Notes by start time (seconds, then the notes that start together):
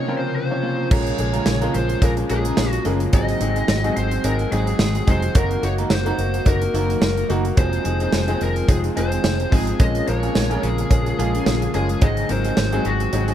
Already playing: C3 C#3 F3 A#3 C4 C#4 D#4 F4 A#4 C#5
0.07 F3 A#3 C4 C#4 F4 A#4 C5
0.17 C5
0.23 muted clean electric guitar stroke
0.36 C5
0.50 F3 C4 C#4 C#5, muted clean electric guitar stroke
0.63 A#3 C#4 F4 C5
0.78 muted clean electric guitar stroke
0.90 A#1 C#3 F3 G#3 A#3 C#4 F4 G#4 A#4 C#5, kick, crash, cowbell
1.07 closed hi-hat
1.18 A#1 F3 G#3 A#3 C#4 G#4, muted clean electric guitar stroke, closed hi-hat
1.33 G#3 C#4 F4 A#4, closed hi-hat
1.46 A#1, muted clean electric guitar stroke, snare, tambourine, cowbell
1.61 F3 G#3 A#3 C#4 F4 G#4 A#4, closed hi-hat
1.74 A#1 C5, muted clean electric guitar stroke, closed hi-hat
1.89 muted clean electric guitar stroke, closed hi-hat
2.01 A#1 F3 G#3 A#3 C#4 G#4 A#4, muted clean electric guitar stroke, kick, closed hi-hat, cowbell
2.17 muted clean electric guitar stroke, closed hi-hat
2.30 A#1 F3 G#3 A#3 C#4 F4 G#4 A#4, closed hi-hat
2.45 G#3 C#4 F4 A#4, closed hi-hat
2.57 A#1, snare, tambourine, cowbell
2.71 F#4, muted clean electric guitar stroke, closed hi-hat
2.85 F#1 F3 G#3 A#3 C#4 F4 G#4 A#4, closed hi-hat
3.00 muted clean electric guitar stroke, closed hi-hat
3.12 G#1 D#3 F#3 G#3 C4 D#4 F#4 G#4 D#5, kick, closed hi-hat, cowbell
3.29 closed hi-hat
3.41 G#1 F#3 G#3 C4 D#4 G#4, muted clean electric guitar stroke, closed hi-hat
3.56 F#3 C4 D#4 G#4, closed hi-hat
3.68 G#1, muted clean electric guitar stroke, snare, tambourine, cowbell
3.84 F#3 G#3 C4 D#4 G#4, closed hi-hat
3.97 G#1 C5, muted clean electric guitar stroke, closed hi-hat
4.11 muted clean electric guitar stroke, closed hi-hat
4.24 G#1 F#3 G#3 C4 D#4 G#4 A#4, closed hi-hat, cowbell
4.39 muted clean electric guitar stroke, closed hi-hat
4.51 G#1 F#3 G#3 C4 D#4 G#4, closed hi-hat
4.67 muted clean electric guitar stroke, closed hi-hat
4.79 G#1, snare, tambourine, cowbell
4.95 muted clean electric guitar stroke, closed hi-hat
5.07 F1 F#3 G#3 C4 D#4 G#4 C5, kick, closed hi-hat
5.22 muted clean electric guitar stroke, closed hi-hat
5.35 F#1 F#3 A#3 D#4 F#4 A#4, kick, closed hi-hat, cowbell
5.51 closed hi-hat
5.62 F#1 A#3 D#4 F#4 C#5, muted clean electric guitar stroke, closed hi-hat
5.78 A#3 D#4 F#4 A#4, closed hi-hat
5.90 F#1 C5, muted clean electric guitar stroke, snare, tambourine, cowbell
6.05 A#3 D#4 F#4 A#4, closed hi-hat
6.18 F#1, muted clean electric guitar stroke, closed hi-hat
6.34 muted clean electric guitar stroke, closed hi-hat
6.46 F#1 A#3 D#4 F#4 A#4, muted clean electric guitar stroke, kick, closed hi-hat, cowbell
6.62 muted clean electric guitar stroke, closed hi-hat
6.73 F#1 A#3 D#4 F#4 A#4, closed hi-hat
6.89 A#3 D#4 F#4 A#4, closed hi-hat
7.01 F#1, snare, tambourine, cowbell
7.17 muted clean electric guitar stroke, closed hi-hat
7.29 F#1 A#3 D#4 F#4 A#4, closed hi-hat
7.45 muted clean electric guitar stroke, closed hi-hat
7.56 F1 D#3 F3 G#3 C4 D#4 F4 G#4 C5, kick, closed hi-hat, cowbell
7.73 closed hi-hat
7.84 F1 F3 G#3 C4 D#4 G#4, muted clean electric guitar stroke, closed hi-hat
8.00 F3 C4 D#4 G#4, closed hi-hat
8.12 F1, muted clean electric guitar stroke, snare, tambourine, cowbell
8.27 F3 G#3 C4 D#4 G#4, closed hi-hat
8.41 F1 A#4, muted clean electric guitar stroke, closed hi-hat
8.56 muted clean electric guitar stroke, closed hi-hat
8.68 F1 F3 G#3 C4 D#4 G#4, kick, closed hi-hat, cowbell
8.84 muted clean electric guitar stroke, closed hi-hat
8.95 F1 F3 G#3 C4 D#4 G#4 C5, closed hi-hat
9.12 muted clean electric guitar stroke, closed hi-hat
9.24 F1, snare, tambourine, cowbell
9.40 muted clean electric guitar stroke, closed hi-hat
9.51 G#1 F3 G#3 C4 D#4 G#4, kick, open hi-hat
9.67 muted clean electric guitar stroke, closed hi-hat
9.79 A#1 C#3 F3 G#3 A#3 C#4 F4 G#4 D#5, kick, closed hi-hat, cowbell
9.95 closed hi-hat
10.07 A#1 F3 G#3 A#3 C#4 A#4 C#5, muted clean electric guitar stroke, closed hi-hat
10.23 G#3 C#4 F4 G#4, closed hi-hat
10.35 A#1, muted clean electric guitar stroke, snare, tambourine, cowbell
10.50 F3 G#3 A#3 C#4 F4 G#4 A#4, closed hi-hat
10.63 A#1 G#4, muted clean electric guitar stroke, closed hi-hat
10.78 muted clean electric guitar stroke, closed hi-hat
10.90 A#1 F3 G#3 A#3 C#4 G#4, muted clean electric guitar stroke, kick, closed hi-hat, cowbell
11.06 muted clean electric guitar stroke, closed hi-hat
11.19 A#1 F3 G#3 A#3 C#4 F4 G#4, closed hi-hat
11.34 G#3 C#4 F4 G#4, closed hi-hat
11.46 A#1, snare, tambourine, cowbell
11.62 muted clean electric guitar stroke, closed hi-hat
11.74 F#1 F3 G#3 A#3 C#4 F4 G#4, closed hi-hat
11.89 muted clean electric guitar stroke, closed hi-hat
12.02 G#1 D#3 F#3 G#3 C4 D#4 F#4 G#4 D#5, kick, closed hi-hat, cowbell
12.17 closed hi-hat
12.29 G#1 F#3 G#3 C4 D#4 A#4 C5, muted clean electric guitar stroke, closed hi-hat
12.45 F#3 C4 D#4 G#4, closed hi-hat
12.57 G#1, muted clean electric guitar stroke, snare, tambourine, cowbell
12.72 F#3 G#3 C4 D#4 G#4, closed hi-hat
12.85 G#1 F#4, muted clean electric guitar stroke, closed hi-hat
13.00 muted clean electric guitar stroke, closed hi-hat
13.12 G#1 F#3 G#3 C4 D#4 G#4, muted clean electric guitar stroke, closed hi-hat, cowbell
13.28 F#3 C4 D#4 G#4, closed hi-hat